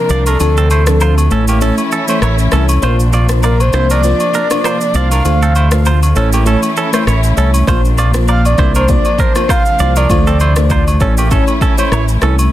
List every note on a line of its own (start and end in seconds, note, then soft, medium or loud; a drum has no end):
0.00 1.27 C3 medium
0.00 1.28 F3 medium
0.00 0.38 A#3 medium
0.00 1.28 D4 medium
0.00 0.29 A#4 medium
0.09 0.35 C2 medium
0.09 0.29 F3 medium
0.09 0.29 C4 medium
0.09 0.30 D4 medium
0.09 0.23 F4 medium
0.09 0.30 A#4 medium
0.09 0.23 D5 medium
0.09 shaker soft
0.26 0.38 D4 medium
0.26 1.18 A4 medium
0.26 0.37 A#4 medium
0.26 high agogo medium
0.26 shaker medium
0.40 1.27 D2 loud
0.40 0.59 F3 medium
0.40 2.80 A3 medium
0.40 0.60 C4 medium
0.40 0.60 D4 medium
0.40 0.60 A4 loud
0.40 high agogo medium
0.40 shaker medium
0.57 0.68 C4 medium
0.57 0.68 A4 medium
0.57 shaker soft
0.70 0.84 E4 medium
0.70 0.83 C5 medium
0.70 high agogo medium
0.70 shaker medium
0.87 1.28 F3 medium
0.87 1.28 C4 medium
0.87 1.28 D4 medium
0.87 1.28 A4 medium
0.87 cross-stick loud
0.87 shaker medium
1.00 1.14 F4 medium
1.00 1.14 C5 medium
1.00 low woodblock medium
1.00 shaker medium
1.18 high agogo medium
1.18 shaker soft
1.31 1.70 A1 loud
1.31 2.81 E3 medium
1.31 1.59 A3 medium
1.31 2.81 C#4 medium
1.31 1.59 C#4 medium
1.31 1.45 C#4 medium
1.31 2.81 E4 medium
1.31 1.59 E4 medium
1.31 1.44 A4 medium
1.31 1.59 C#5 medium
1.31 shaker soft
1.48 1.59 A#3 medium
1.48 1.59 G4 medium
1.48 high agogo medium
1.48 shaker loud
1.61 1.81 A3 medium
1.61 1.81 C#4 medium
1.61 1.75 C#4 medium
1.61 1.81 E4 medium
1.61 1.74 A4 medium
1.61 1.81 C#5 loud
1.61 shaker medium
1.78 high agogo medium
1.78 shaker medium
1.92 2.05 C#4 medium
1.92 2.05 A4 medium
1.92 shaker soft
2.08 2.49 A3 medium
2.08 2.49 C#4 medium
2.08 2.49 E4 medium
2.08 2.20 E4 medium
2.08 2.19 C5 medium
2.08 2.49 C#5 medium
2.08 high agogo medium
2.08 shaker medium
2.22 2.47 A1 medium
2.22 2.36 E4 medium
2.22 2.35 C#5 medium
2.22 cross-stick medium
2.22 low woodblock medium
2.22 shaker medium
2.38 shaker soft
2.52 2.77 C2 medium
2.52 2.80 A3 medium
2.52 2.80 C#4 medium
2.52 2.66 C#4 medium
2.52 2.80 E4 medium
2.52 2.65 A4 medium
2.52 2.81 C#5 medium
2.52 cross-stick medium
2.52 shaker soft
2.69 high agogo medium
2.69 shaker medium
2.82 3.69 A#1 loud
2.82 6.13 C3 medium
2.82 6.13 F3 medium
2.82 3.02 A#3 medium
2.82 5.22 A#3 medium
2.82 3.02 D4 medium
2.82 6.12 D4 medium
2.82 3.02 F4 medium
2.82 2.96 F4 medium
2.82 3.02 C5 loud
2.82 2.96 C5 loud
2.82 high agogo medium
2.82 shaker medium
3.00 shaker soft
3.13 3.26 F4 medium
3.13 3.26 D5 medium
3.13 high agogo medium
3.13 shaker medium
3.29 3.70 A#3 medium
3.29 3.70 D4 medium
3.29 3.70 F4 medium
3.29 3.70 C5 medium
3.29 cross-stick loud
3.29 shaker loud
3.43 3.57 F4 medium
3.43 3.63 A#4 medium
3.43 3.56 D5 medium
3.43 low woodblock medium
3.43 shaker medium
3.60 3.91 C5 medium
3.60 high agogo medium
3.60 shaker medium
3.73 4.12 C2 medium
3.73 4.01 A#3 medium
3.73 4.02 D4 medium
3.73 3.87 E4 medium
3.73 4.02 F4 medium
3.73 4.02 C5 medium
3.73 3.86 C5 medium
3.73 cross-stick medium
3.73 shaker soft
3.90 4.01 D4 medium
3.90 4.01 A#4 medium
3.90 4.97 D5 loud
3.90 high agogo medium
3.90 shaker loud
4.03 4.23 A#3 medium
4.03 4.23 D4 medium
4.03 4.23 F4 medium
4.03 4.24 C5 loud
4.03 shaker medium
4.20 high agogo medium
4.20 shaker soft
4.34 4.48 D4 medium
4.34 4.47 A#4 medium
4.34 shaker soft
4.50 4.68 A#3 medium
4.50 4.68 D4 medium
4.50 4.68 F4 medium
4.50 4.68 C5 medium
4.50 cross-stick medium
4.50 high agogo medium
4.50 shaker medium
4.64 4.78 F4 medium
4.64 4.77 C5 medium
4.64 cross-stick loud
4.64 low woodblock medium
4.64 shaker medium
4.81 shaker soft
4.94 5.20 C2 medium
4.94 5.14 A#3 medium
4.94 5.14 D4 medium
4.94 5.14 F4 medium
4.94 5.08 F4 medium
4.94 5.14 C5 medium
4.94 5.08 D5 medium
4.94 5.86 F5 loud
4.94 shaker soft
5.11 5.23 D4 medium
5.11 5.22 A#4 medium
5.11 high agogo medium
5.11 shaker medium
5.25 6.12 D2 loud
5.25 7.65 A3 medium
5.25 5.45 A3 medium
5.25 5.45 D4 medium
5.25 5.45 F4 medium
5.25 5.45 C5 loud
5.25 high agogo medium
5.25 shaker medium
5.42 5.53 C4 medium
5.42 5.52 A4 medium
5.42 shaker soft
5.55 5.69 E4 medium
5.55 5.68 C5 medium
5.55 high agogo medium
5.55 shaker soft
5.71 6.13 A3 medium
5.71 6.13 D4 medium
5.71 6.13 F4 medium
5.71 6.13 C5 medium
5.71 cross-stick loud
5.71 shaker loud
5.85 5.99 F4 medium
5.85 5.99 C5 medium
5.85 low woodblock medium
5.85 shaker medium
6.03 high agogo medium
6.03 shaker medium
6.15 6.55 A1 medium
6.15 7.66 E3 medium
6.15 6.44 A3 medium
6.15 6.44 C#4 medium
6.15 7.66 C#4 medium
6.15 6.29 C#4 medium
6.15 6.44 E4 medium
6.15 7.66 E4 medium
6.15 6.29 A4 medium
6.15 6.44 C#5 medium
6.15 shaker soft
6.33 6.44 A#3 medium
6.33 6.43 G4 medium
6.33 high agogo medium
6.33 shaker loud
6.45 6.65 A3 medium
6.45 6.66 C#4 medium
6.45 6.60 C#4 medium
6.45 6.66 E4 medium
6.45 6.59 A4 medium
6.45 6.66 C#5 loud
6.45 shaker medium
6.63 high agogo medium
6.63 shaker medium
6.77 6.90 C#4 medium
6.77 6.90 A4 medium
6.77 shaker soft
6.93 7.34 A3 medium
6.93 7.34 C#4 medium
6.93 7.34 E4 medium
6.93 7.04 E4 medium
6.93 7.04 C5 medium
6.93 7.34 C#5 medium
6.93 cross-stick medium
6.93 high agogo medium
6.93 shaker medium
7.07 7.32 A1 medium
7.07 7.20 E4 medium
7.07 7.20 C#5 medium
7.07 cross-stick medium
7.07 shaker medium
7.23 shaker soft
7.37 7.62 C2 medium
7.37 7.65 A3 medium
7.37 7.65 C#4 medium
7.37 7.51 C#4 medium
7.37 7.65 E4 medium
7.37 7.50 A4 medium
7.37 7.65 C#5 medium
7.37 shaker soft
7.54 high agogo medium
7.54 shaker medium
7.67 8.54 A#1 loud
7.67 10.98 C3 medium
7.67 10.98 F3 medium
7.67 7.87 A#3 medium
7.67 10.08 A#3 medium
7.67 7.87 D4 medium
7.67 10.98 D4 medium
7.67 7.87 F4 medium
7.67 7.81 F4 medium
7.67 7.87 C5 loud
7.67 7.81 C5 loud
7.67 kick loud
7.67 high agogo medium
7.67 shaker medium
7.85 shaker soft
7.98 8.11 F4 medium
7.98 8.11 D5 medium
7.98 high agogo medium
7.98 shaker medium
8.14 8.55 A#3 medium
8.14 8.55 D4 medium
8.14 8.55 F4 medium
8.14 8.55 C5 medium
8.14 cross-stick loud
8.14 shaker medium
8.28 8.41 F4 medium
8.28 8.41 D5 medium
8.28 8.44 F5 loud
8.28 low woodblock medium
8.28 shaker medium
8.45 8.74 D5 medium
8.45 high agogo medium
8.45 shaker medium
8.58 8.97 C2 medium
8.58 8.86 A#3 medium
8.58 8.86 D4 medium
8.58 8.72 E4 medium
8.58 8.86 F4 medium
8.58 8.86 C5 medium
8.58 8.71 C5 medium
8.58 kick medium
8.58 cross-stick medium
8.58 shaker soft
8.75 8.86 D4 medium
8.75 8.86 A#4 medium
8.75 8.91 C5 medium
8.75 high agogo medium
8.75 shaker loud
8.88 9.08 A#3 medium
8.88 9.08 D4 medium
8.88 9.08 F4 medium
8.88 9.08 C5 loud
8.88 9.22 D5 loud
8.88 kick medium
8.88 shaker medium
9.05 high agogo medium
9.05 shaker medium
9.19 9.32 D4 medium
9.19 9.32 A#4 medium
9.19 9.50 C5 medium
9.19 kick medium
9.19 shaker soft
9.35 9.53 A#3 medium
9.35 9.53 D4 medium
9.35 9.53 F4 medium
9.35 9.53 C5 medium
9.35 cross-stick medium
9.35 high agogo medium
9.35 shaker medium
9.49 9.63 F4 medium
9.49 9.62 C5 medium
9.49 9.98 F5 loud
9.49 kick medium
9.49 cross-stick medium
9.49 low woodblock medium
9.49 shaker medium
9.65 shaker soft
9.79 10.05 C2 medium
9.79 9.99 A#3 medium
9.79 9.99 D4 medium
9.79 9.99 F4 medium
9.79 9.93 F4 medium
9.79 9.99 C5 medium
9.79 9.92 D5 medium
9.79 shaker soft
9.96 10.07 D4 medium
9.96 10.07 A#4 medium
9.96 10.88 D5 medium
9.96 high agogo medium
9.96 shaker medium
10.09 10.97 D2 loud
10.09 10.29 A3 medium
10.09 12.50 A3 medium
10.09 10.29 D4 medium
10.09 10.29 F4 medium
10.09 10.29 C5 loud
10.09 kick loud
10.09 high agogo medium
10.09 shaker medium
10.27 10.38 C4 medium
10.27 10.37 A4 medium
10.27 shaker soft
10.40 10.54 E4 medium
10.40 10.53 C5 medium
10.40 high agogo medium
10.40 shaker medium
10.56 10.97 A3 medium
10.56 10.97 D4 medium
10.56 10.98 F4 medium
10.56 10.98 C5 medium
10.56 cross-stick loud
10.56 shaker medium
10.70 10.84 F4 medium
10.70 10.83 C5 medium
10.70 kick medium
10.70 low woodblock medium
10.70 shaker medium
10.88 high agogo medium
10.88 shaker soft
11.00 11.39 A1 loud
11.00 12.51 E3 medium
11.00 11.29 A3 medium
11.00 11.29 C#4 medium
11.00 12.51 C#4 medium
11.00 11.14 C#4 medium
11.00 11.29 E4 medium
11.00 12.51 E4 medium
11.00 11.14 A4 medium
11.00 11.29 C#5 medium
11.00 kick medium
11.00 shaker soft
11.17 11.29 A#3 medium
11.17 11.28 G4 medium
11.17 high agogo medium
11.17 shaker loud
11.31 11.51 A3 medium
11.31 11.51 C#4 medium
11.31 11.45 C#4 medium
11.31 11.51 E4 medium
11.31 11.44 A4 medium
11.31 11.51 C#5 loud
11.31 kick loud
11.31 shaker medium
11.47 high agogo medium
11.47 shaker medium
11.61 11.75 C#4 medium
11.61 11.74 A4 medium
11.61 kick medium
11.61 shaker soft
11.77 12.18 A3 medium
11.77 12.19 C#4 medium
11.77 12.19 E4 medium
11.77 11.89 E4 medium
11.77 11.89 C5 medium
11.77 12.19 C#5 medium
11.77 high agogo medium
11.77 shaker medium
11.92 12.17 A1 medium
11.92 12.05 E4 medium
11.92 12.05 C#5 medium
11.92 cross-stick medium
11.92 low woodblock medium
11.92 shaker medium
12.08 shaker soft
12.22 12.47 C2 medium
12.22 12.50 A3 medium
12.22 12.50 C#4 medium
12.22 12.36 C#4 medium
12.22 12.50 E4 medium
12.22 12.35 A4 medium
12.22 12.50 C#5 medium
12.22 cross-stick medium
12.22 shaker soft
12.39 high agogo medium
12.39 shaker medium